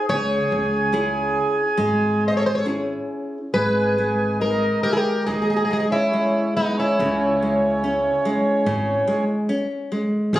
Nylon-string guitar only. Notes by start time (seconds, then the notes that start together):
0.09 C#3
0.93 C#4 E4 G#4
1.77 G#3
2.65 C#4 E4 G#4
3.54 G#3
3.98 G#3
4.41 G#3
4.84 G#3
5.27 G#3
5.71 G#3
6.13 G#3
6.57 G#3
7.00 C#3
7.42 G#3
7.84 C#4
8.25 G#3
8.66 C#3
9.07 G#3
9.49 C#4
9.92 G#3
10.34 F3